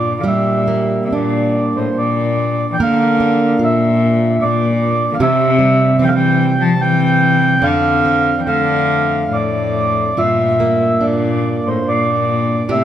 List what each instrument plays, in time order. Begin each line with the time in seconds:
Already playing: steel-string acoustic guitar G2 D4 F4, cello A#2, accordion D5
0.19 cello D3, accordion F5
0.24 cello A#2, steel-string acoustic guitar G3 G4, accordion E5
0.68 steel-string acoustic guitar A#3
1.05 cello C3, accordion E5
1.13 cello A#2, steel-string acoustic guitar D4, accordion D5
1.76 cello A2, accordion C5
1.96 cello A#2, accordion D5
2.71 cello E3, accordion G5
2.80 cello D3, steel-string acoustic guitar A#3 A#4, accordion F5
3.20 steel-string acoustic guitar D4
3.59 cello A#2, steel-string acoustic guitar F4
3.64 accordion E5
4.42 cello A#2, accordion D5
5.12 cello D3, accordion F5
5.19 cello C3, steel-string acoustic guitar C3 G4, accordion E5
5.59 steel-string acoustic guitar G3
5.99 cello E3, steel-string acoustic guitar C4
6.04 cello D3, accordion F5 G5
6.13 cello E3, accordion G5
6.60 cello F3, accordion A5
6.80 cello E3, accordion G5
7.61 steel-string acoustic guitar F2 D4, cello D3, accordion F5
8.05 steel-string acoustic guitar C4
8.38 cello E3, accordion G5
8.45 cello D3, steel-string acoustic guitar A3, accordion F5
9.30 cello A2, accordion D5
10.17 steel-string acoustic guitar G2 F4, cello A#2, accordion E5
10.60 steel-string acoustic guitar A#3
11.01 cello A#2, steel-string acoustic guitar D4, accordion D5
11.66 cello A2, accordion C5
11.87 cello A#2, accordion D5
12.69 steel-string acoustic guitar A2 G4, cello C3, accordion E5